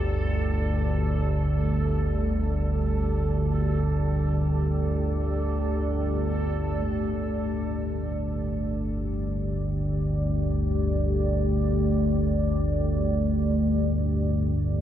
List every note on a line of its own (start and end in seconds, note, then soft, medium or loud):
0.00 6.83 G1 medium
0.00 6.82 D2 medium
0.00 14.81 A3 medium
0.00 14.81 G4 medium
0.00 6.86 A4 medium
0.00 14.81 D5 medium
6.84 14.81 G1 medium
6.84 14.81 D2 medium